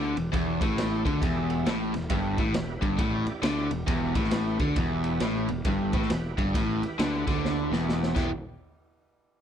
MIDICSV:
0, 0, Header, 1, 7, 480
1, 0, Start_track
1, 0, Key_signature, 1, "minor"
1, 0, Tempo, 444444
1, 1310, Time_signature, 4, 2, 24, 8
1, 10164, End_track
2, 0, Start_track
2, 0, Title_t, "Tonewheel organ"
2, 0, Program_c, 0, 16
2, 0, Note_on_c, 0, 64, 82
2, 0, Note_on_c, 0, 67, 72
2, 0, Note_on_c, 0, 69, 87
2, 195, Note_off_c, 0, 64, 0
2, 195, Note_off_c, 0, 67, 0
2, 198, Note_off_c, 0, 69, 0
2, 360, Note_on_c, 0, 67, 77
2, 362, Note_on_c, 0, 64, 79
2, 362, Note_on_c, 0, 69, 85
2, 1155, Note_off_c, 0, 67, 0
2, 1156, Note_off_c, 0, 64, 0
2, 1156, Note_off_c, 0, 69, 0
2, 1307, Note_on_c, 0, 64, 79
2, 1311, Note_on_c, 0, 67, 70
2, 1314, Note_on_c, 0, 69, 93
2, 2108, Note_off_c, 0, 64, 0
2, 2110, Note_off_c, 0, 67, 0
2, 2112, Note_off_c, 0, 69, 0
2, 2251, Note_on_c, 0, 64, 85
2, 2252, Note_on_c, 0, 71, 83
2, 2254, Note_on_c, 0, 67, 73
2, 3060, Note_off_c, 0, 64, 0
2, 3061, Note_off_c, 0, 71, 0
2, 3062, Note_off_c, 0, 67, 0
2, 3217, Note_on_c, 0, 64, 79
2, 3220, Note_on_c, 0, 67, 73
2, 3221, Note_on_c, 0, 74, 88
2, 4023, Note_off_c, 0, 64, 0
2, 4025, Note_off_c, 0, 67, 0
2, 4025, Note_off_c, 0, 74, 0
2, 4170, Note_on_c, 0, 64, 76
2, 4178, Note_on_c, 0, 67, 71
2, 4178, Note_on_c, 0, 71, 87
2, 4980, Note_off_c, 0, 64, 0
2, 4984, Note_off_c, 0, 67, 0
2, 4985, Note_off_c, 0, 71, 0
2, 5145, Note_on_c, 0, 64, 82
2, 5148, Note_on_c, 0, 71, 88
2, 5149, Note_on_c, 0, 67, 73
2, 5949, Note_off_c, 0, 64, 0
2, 5950, Note_off_c, 0, 71, 0
2, 5951, Note_off_c, 0, 67, 0
2, 6089, Note_on_c, 0, 64, 78
2, 6089, Note_on_c, 0, 67, 78
2, 6094, Note_on_c, 0, 71, 88
2, 6901, Note_off_c, 0, 64, 0
2, 6901, Note_off_c, 0, 67, 0
2, 6904, Note_off_c, 0, 71, 0
2, 7062, Note_on_c, 0, 67, 73
2, 7067, Note_on_c, 0, 64, 81
2, 7067, Note_on_c, 0, 71, 89
2, 7869, Note_off_c, 0, 67, 0
2, 7871, Note_off_c, 0, 64, 0
2, 7871, Note_off_c, 0, 71, 0
2, 8029, Note_on_c, 0, 64, 77
2, 8035, Note_on_c, 0, 71, 87
2, 8036, Note_on_c, 0, 67, 71
2, 8796, Note_off_c, 0, 67, 0
2, 8805, Note_on_c, 0, 66, 74
2, 8806, Note_on_c, 0, 74, 82
2, 8809, Note_on_c, 0, 67, 64
2, 8813, Note_off_c, 0, 64, 0
2, 8817, Note_off_c, 0, 71, 0
2, 8976, Note_off_c, 0, 66, 0
2, 8976, Note_off_c, 0, 74, 0
2, 8978, Note_off_c, 0, 67, 0
2, 10164, End_track
3, 0, Start_track
3, 0, Title_t, "Overdriven electric guitar"
3, 0, Program_c, 1, 29
3, 0, Note_on_c, 1, 50, 94
3, 167, Note_off_c, 1, 50, 0
3, 176, Note_on_c, 1, 40, 66
3, 318, Note_off_c, 1, 40, 0
3, 350, Note_on_c, 1, 40, 90
3, 643, Note_off_c, 1, 40, 0
3, 663, Note_on_c, 1, 45, 96
3, 1128, Note_off_c, 1, 45, 0
3, 1138, Note_on_c, 1, 50, 97
3, 1308, Note_off_c, 1, 50, 0
3, 1312, Note_on_c, 1, 40, 99
3, 1785, Note_off_c, 1, 40, 0
3, 1794, Note_on_c, 1, 45, 100
3, 2084, Note_off_c, 1, 45, 0
3, 2097, Note_on_c, 1, 40, 66
3, 2236, Note_off_c, 1, 40, 0
3, 2273, Note_on_c, 1, 43, 93
3, 2564, Note_off_c, 1, 43, 0
3, 2576, Note_on_c, 1, 45, 92
3, 2742, Note_on_c, 1, 40, 74
3, 2746, Note_off_c, 1, 45, 0
3, 2986, Note_off_c, 1, 40, 0
3, 3041, Note_on_c, 1, 43, 98
3, 3218, Note_off_c, 1, 43, 0
3, 3219, Note_on_c, 1, 45, 106
3, 3516, Note_off_c, 1, 45, 0
3, 3705, Note_on_c, 1, 50, 91
3, 3999, Note_off_c, 1, 50, 0
3, 4017, Note_on_c, 1, 40, 68
3, 4156, Note_off_c, 1, 40, 0
3, 4182, Note_on_c, 1, 40, 99
3, 4478, Note_off_c, 1, 40, 0
3, 4490, Note_on_c, 1, 45, 91
3, 4961, Note_off_c, 1, 45, 0
3, 4974, Note_on_c, 1, 50, 102
3, 5145, Note_off_c, 1, 50, 0
3, 5148, Note_on_c, 1, 40, 109
3, 5624, Note_off_c, 1, 40, 0
3, 5626, Note_on_c, 1, 45, 92
3, 5921, Note_off_c, 1, 45, 0
3, 5932, Note_on_c, 1, 40, 74
3, 6075, Note_off_c, 1, 40, 0
3, 6113, Note_on_c, 1, 43, 92
3, 6405, Note_off_c, 1, 43, 0
3, 6412, Note_on_c, 1, 45, 102
3, 6585, Note_off_c, 1, 45, 0
3, 6588, Note_on_c, 1, 40, 70
3, 6831, Note_off_c, 1, 40, 0
3, 6895, Note_on_c, 1, 43, 99
3, 7066, Note_on_c, 1, 45, 98
3, 7067, Note_off_c, 1, 43, 0
3, 7362, Note_off_c, 1, 45, 0
3, 7550, Note_on_c, 1, 50, 93
3, 7841, Note_off_c, 1, 50, 0
3, 7854, Note_on_c, 1, 50, 99
3, 8326, Note_off_c, 1, 50, 0
3, 8334, Note_on_c, 1, 40, 89
3, 8798, Note_on_c, 1, 52, 86
3, 8802, Note_on_c, 1, 59, 86
3, 8815, Note_off_c, 1, 40, 0
3, 8815, Note_on_c, 1, 64, 96
3, 8816, Note_on_c, 1, 67, 105
3, 8950, Note_off_c, 1, 52, 0
3, 8952, Note_off_c, 1, 59, 0
3, 8958, Note_off_c, 1, 64, 0
3, 8958, Note_off_c, 1, 67, 0
3, 10164, End_track
4, 0, Start_track
4, 0, Title_t, "Fingered electric bass"
4, 0, Program_c, 2, 33
4, 0, Note_on_c, 2, 38, 86
4, 159, Note_off_c, 2, 38, 0
4, 188, Note_on_c, 2, 28, 78
4, 347, Note_off_c, 2, 28, 0
4, 362, Note_on_c, 2, 28, 88
4, 638, Note_off_c, 2, 28, 0
4, 662, Note_on_c, 2, 33, 88
4, 1103, Note_off_c, 2, 33, 0
4, 1137, Note_on_c, 2, 38, 94
4, 1301, Note_off_c, 2, 38, 0
4, 1317, Note_on_c, 2, 28, 91
4, 1760, Note_off_c, 2, 28, 0
4, 1805, Note_on_c, 2, 33, 86
4, 2078, Note_off_c, 2, 33, 0
4, 2100, Note_on_c, 2, 28, 67
4, 2262, Note_off_c, 2, 28, 0
4, 2270, Note_on_c, 2, 31, 89
4, 2550, Note_off_c, 2, 31, 0
4, 2572, Note_on_c, 2, 33, 89
4, 2737, Note_off_c, 2, 33, 0
4, 2757, Note_on_c, 2, 28, 77
4, 3034, Note_off_c, 2, 28, 0
4, 3047, Note_on_c, 2, 31, 90
4, 3214, Note_off_c, 2, 31, 0
4, 3224, Note_on_c, 2, 33, 85
4, 3507, Note_off_c, 2, 33, 0
4, 3697, Note_on_c, 2, 38, 89
4, 3983, Note_off_c, 2, 38, 0
4, 4007, Note_on_c, 2, 28, 73
4, 4174, Note_off_c, 2, 28, 0
4, 4186, Note_on_c, 2, 28, 87
4, 4468, Note_off_c, 2, 28, 0
4, 4484, Note_on_c, 2, 33, 94
4, 4934, Note_off_c, 2, 33, 0
4, 4965, Note_on_c, 2, 38, 96
4, 5133, Note_off_c, 2, 38, 0
4, 5145, Note_on_c, 2, 28, 84
4, 5594, Note_off_c, 2, 28, 0
4, 5626, Note_on_c, 2, 33, 89
4, 5909, Note_off_c, 2, 33, 0
4, 5929, Note_on_c, 2, 28, 74
4, 6096, Note_off_c, 2, 28, 0
4, 6102, Note_on_c, 2, 31, 89
4, 6387, Note_off_c, 2, 31, 0
4, 6404, Note_on_c, 2, 33, 87
4, 6574, Note_off_c, 2, 33, 0
4, 6587, Note_on_c, 2, 28, 82
4, 6870, Note_off_c, 2, 28, 0
4, 6888, Note_on_c, 2, 31, 96
4, 7056, Note_off_c, 2, 31, 0
4, 7071, Note_on_c, 2, 33, 87
4, 7352, Note_off_c, 2, 33, 0
4, 7548, Note_on_c, 2, 38, 84
4, 7831, Note_off_c, 2, 38, 0
4, 7855, Note_on_c, 2, 38, 82
4, 8302, Note_off_c, 2, 38, 0
4, 8334, Note_on_c, 2, 28, 86
4, 8781, Note_off_c, 2, 28, 0
4, 8814, Note_on_c, 2, 28, 94
4, 8981, Note_off_c, 2, 28, 0
4, 10164, End_track
5, 0, Start_track
5, 0, Title_t, "Muted fingered electric bass strokes"
5, 3525, Note_on_c, 9, 29, 36
5, 3633, Note_off_c, 9, 29, 0
5, 7373, Note_on_c, 9, 29, 38
5, 7481, Note_off_c, 9, 29, 0
5, 10164, End_track
6, 0, Start_track
6, 0, Title_t, "Muted overdriven electric guitar strokes"
6, 3527, Note_on_c, 9, 29, 57
6, 3635, Note_off_c, 9, 29, 0
6, 7369, Note_on_c, 9, 29, 59
6, 7477, Note_off_c, 9, 29, 0
6, 10164, End_track
7, 0, Start_track
7, 0, Title_t, "Drums"
7, 182, Note_on_c, 9, 51, 67
7, 290, Note_off_c, 9, 51, 0
7, 358, Note_on_c, 9, 36, 99
7, 361, Note_on_c, 9, 51, 87
7, 466, Note_off_c, 9, 36, 0
7, 469, Note_off_c, 9, 51, 0
7, 659, Note_on_c, 9, 36, 110
7, 664, Note_on_c, 9, 51, 71
7, 767, Note_off_c, 9, 36, 0
7, 772, Note_off_c, 9, 51, 0
7, 843, Note_on_c, 9, 51, 90
7, 849, Note_on_c, 9, 38, 110
7, 951, Note_off_c, 9, 51, 0
7, 957, Note_off_c, 9, 38, 0
7, 1139, Note_on_c, 9, 36, 97
7, 1148, Note_on_c, 9, 51, 65
7, 1247, Note_off_c, 9, 36, 0
7, 1256, Note_off_c, 9, 51, 0
7, 1316, Note_on_c, 9, 36, 109
7, 1323, Note_on_c, 9, 51, 84
7, 1424, Note_off_c, 9, 36, 0
7, 1431, Note_off_c, 9, 51, 0
7, 1618, Note_on_c, 9, 51, 59
7, 1726, Note_off_c, 9, 51, 0
7, 1796, Note_on_c, 9, 51, 78
7, 1803, Note_on_c, 9, 38, 99
7, 1904, Note_off_c, 9, 51, 0
7, 1911, Note_off_c, 9, 38, 0
7, 2093, Note_on_c, 9, 51, 61
7, 2100, Note_on_c, 9, 38, 30
7, 2201, Note_off_c, 9, 51, 0
7, 2208, Note_off_c, 9, 38, 0
7, 2264, Note_on_c, 9, 51, 82
7, 2269, Note_on_c, 9, 36, 96
7, 2372, Note_off_c, 9, 51, 0
7, 2377, Note_off_c, 9, 36, 0
7, 2569, Note_on_c, 9, 51, 60
7, 2571, Note_on_c, 9, 36, 107
7, 2677, Note_off_c, 9, 51, 0
7, 2679, Note_off_c, 9, 36, 0
7, 2744, Note_on_c, 9, 51, 85
7, 2750, Note_on_c, 9, 38, 115
7, 2852, Note_off_c, 9, 51, 0
7, 2858, Note_off_c, 9, 38, 0
7, 3048, Note_on_c, 9, 36, 102
7, 3050, Note_on_c, 9, 51, 63
7, 3156, Note_off_c, 9, 36, 0
7, 3158, Note_off_c, 9, 51, 0
7, 3223, Note_on_c, 9, 51, 90
7, 3225, Note_on_c, 9, 36, 107
7, 3331, Note_off_c, 9, 51, 0
7, 3333, Note_off_c, 9, 36, 0
7, 3526, Note_on_c, 9, 51, 63
7, 3634, Note_off_c, 9, 51, 0
7, 3703, Note_on_c, 9, 51, 91
7, 3710, Note_on_c, 9, 38, 95
7, 3811, Note_off_c, 9, 51, 0
7, 3818, Note_off_c, 9, 38, 0
7, 4004, Note_on_c, 9, 51, 67
7, 4112, Note_off_c, 9, 51, 0
7, 4186, Note_on_c, 9, 36, 99
7, 4187, Note_on_c, 9, 51, 93
7, 4294, Note_off_c, 9, 36, 0
7, 4295, Note_off_c, 9, 51, 0
7, 4483, Note_on_c, 9, 51, 72
7, 4485, Note_on_c, 9, 36, 109
7, 4575, Note_on_c, 9, 38, 34
7, 4591, Note_off_c, 9, 51, 0
7, 4593, Note_off_c, 9, 36, 0
7, 4656, Note_on_c, 9, 51, 96
7, 4663, Note_off_c, 9, 38, 0
7, 4663, Note_on_c, 9, 38, 109
7, 4764, Note_off_c, 9, 51, 0
7, 4771, Note_off_c, 9, 38, 0
7, 4962, Note_on_c, 9, 51, 67
7, 4964, Note_on_c, 9, 36, 90
7, 5070, Note_off_c, 9, 51, 0
7, 5072, Note_off_c, 9, 36, 0
7, 5141, Note_on_c, 9, 51, 94
7, 5143, Note_on_c, 9, 36, 110
7, 5249, Note_off_c, 9, 51, 0
7, 5251, Note_off_c, 9, 36, 0
7, 5440, Note_on_c, 9, 51, 64
7, 5548, Note_off_c, 9, 51, 0
7, 5618, Note_on_c, 9, 51, 85
7, 5625, Note_on_c, 9, 38, 97
7, 5726, Note_off_c, 9, 51, 0
7, 5733, Note_off_c, 9, 38, 0
7, 5923, Note_on_c, 9, 51, 59
7, 6031, Note_off_c, 9, 51, 0
7, 6097, Note_on_c, 9, 51, 83
7, 6102, Note_on_c, 9, 36, 96
7, 6205, Note_off_c, 9, 51, 0
7, 6210, Note_off_c, 9, 36, 0
7, 6404, Note_on_c, 9, 51, 65
7, 6407, Note_on_c, 9, 36, 109
7, 6506, Note_on_c, 9, 38, 31
7, 6512, Note_off_c, 9, 51, 0
7, 6515, Note_off_c, 9, 36, 0
7, 6586, Note_on_c, 9, 51, 84
7, 6593, Note_off_c, 9, 38, 0
7, 6593, Note_on_c, 9, 38, 111
7, 6694, Note_off_c, 9, 51, 0
7, 6701, Note_off_c, 9, 38, 0
7, 6890, Note_on_c, 9, 36, 97
7, 6894, Note_on_c, 9, 51, 62
7, 6998, Note_off_c, 9, 36, 0
7, 7002, Note_off_c, 9, 51, 0
7, 7070, Note_on_c, 9, 36, 106
7, 7074, Note_on_c, 9, 51, 87
7, 7178, Note_off_c, 9, 36, 0
7, 7182, Note_off_c, 9, 51, 0
7, 7377, Note_on_c, 9, 51, 58
7, 7485, Note_off_c, 9, 51, 0
7, 7553, Note_on_c, 9, 51, 84
7, 7559, Note_on_c, 9, 38, 106
7, 7661, Note_off_c, 9, 51, 0
7, 7667, Note_off_c, 9, 38, 0
7, 7855, Note_on_c, 9, 36, 100
7, 7856, Note_on_c, 9, 51, 61
7, 7862, Note_on_c, 9, 38, 28
7, 7963, Note_off_c, 9, 36, 0
7, 7964, Note_off_c, 9, 51, 0
7, 7970, Note_off_c, 9, 38, 0
7, 8044, Note_on_c, 9, 38, 61
7, 8152, Note_off_c, 9, 38, 0
7, 8345, Note_on_c, 9, 38, 71
7, 8453, Note_off_c, 9, 38, 0
7, 8520, Note_on_c, 9, 38, 80
7, 8628, Note_off_c, 9, 38, 0
7, 8671, Note_on_c, 9, 38, 71
7, 8779, Note_off_c, 9, 38, 0
7, 8812, Note_on_c, 9, 49, 77
7, 8813, Note_on_c, 9, 36, 99
7, 8920, Note_off_c, 9, 49, 0
7, 8921, Note_off_c, 9, 36, 0
7, 10164, End_track
0, 0, End_of_file